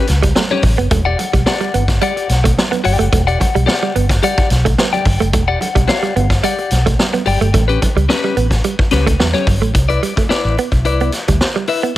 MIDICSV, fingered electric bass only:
0, 0, Header, 1, 3, 480
1, 0, Start_track
1, 0, Tempo, 552486
1, 794, Time_signature, 4, 2, 24, 8
1, 10406, End_track
2, 0, Start_track
2, 0, Title_t, "Fingered electric bass"
2, 0, Program_c, 0, 33
2, 80, Note_on_c, 0, 37, 81
2, 273, Note_off_c, 0, 37, 0
2, 549, Note_on_c, 0, 33, 91
2, 654, Note_off_c, 0, 33, 0
2, 682, Note_on_c, 0, 30, 78
2, 774, Note_off_c, 0, 30, 0
2, 792, Note_on_c, 0, 28, 101
2, 988, Note_off_c, 0, 28, 0
2, 1161, Note_on_c, 0, 35, 85
2, 1253, Note_off_c, 0, 35, 0
2, 1517, Note_on_c, 0, 31, 88
2, 1711, Note_off_c, 0, 31, 0
2, 1994, Note_on_c, 0, 35, 85
2, 2189, Note_off_c, 0, 35, 0
2, 2481, Note_on_c, 0, 31, 87
2, 2581, Note_off_c, 0, 31, 0
2, 2601, Note_on_c, 0, 30, 85
2, 2693, Note_off_c, 0, 30, 0
2, 2716, Note_on_c, 0, 28, 105
2, 2910, Note_off_c, 0, 28, 0
2, 3085, Note_on_c, 0, 35, 87
2, 3175, Note_off_c, 0, 35, 0
2, 3438, Note_on_c, 0, 31, 86
2, 3631, Note_off_c, 0, 31, 0
2, 3916, Note_on_c, 0, 35, 87
2, 4110, Note_off_c, 0, 35, 0
2, 4392, Note_on_c, 0, 31, 90
2, 4496, Note_off_c, 0, 31, 0
2, 4525, Note_on_c, 0, 30, 83
2, 4634, Note_off_c, 0, 30, 0
2, 4634, Note_on_c, 0, 28, 102
2, 4829, Note_off_c, 0, 28, 0
2, 5002, Note_on_c, 0, 35, 89
2, 5092, Note_off_c, 0, 35, 0
2, 5352, Note_on_c, 0, 31, 91
2, 5547, Note_off_c, 0, 31, 0
2, 5834, Note_on_c, 0, 35, 87
2, 6028, Note_off_c, 0, 35, 0
2, 6310, Note_on_c, 0, 31, 97
2, 6414, Note_off_c, 0, 31, 0
2, 6435, Note_on_c, 0, 31, 74
2, 6529, Note_off_c, 0, 31, 0
2, 6552, Note_on_c, 0, 33, 112
2, 6747, Note_off_c, 0, 33, 0
2, 6913, Note_on_c, 0, 37, 85
2, 7007, Note_off_c, 0, 37, 0
2, 7269, Note_on_c, 0, 33, 85
2, 7465, Note_off_c, 0, 33, 0
2, 7753, Note_on_c, 0, 37, 92
2, 7947, Note_off_c, 0, 37, 0
2, 7992, Note_on_c, 0, 40, 84
2, 8095, Note_off_c, 0, 40, 0
2, 8229, Note_on_c, 0, 31, 92
2, 8356, Note_off_c, 0, 31, 0
2, 8356, Note_on_c, 0, 33, 83
2, 8449, Note_off_c, 0, 33, 0
2, 8471, Note_on_c, 0, 36, 107
2, 8667, Note_off_c, 0, 36, 0
2, 9076, Note_on_c, 0, 33, 94
2, 9170, Note_off_c, 0, 33, 0
2, 9314, Note_on_c, 0, 35, 93
2, 9434, Note_off_c, 0, 35, 0
2, 9434, Note_on_c, 0, 36, 98
2, 9630, Note_off_c, 0, 36, 0
2, 9803, Note_on_c, 0, 38, 79
2, 9895, Note_off_c, 0, 38, 0
2, 10406, End_track
3, 0, Start_track
3, 0, Title_t, "Muted fingered electric bass strokes"
3, 8836, Note_on_c, 9, 29, 41
3, 8923, Note_off_c, 9, 29, 0
3, 8954, Note_on_c, 9, 29, 42
3, 9041, Note_off_c, 9, 29, 0
3, 10406, End_track
0, 0, End_of_file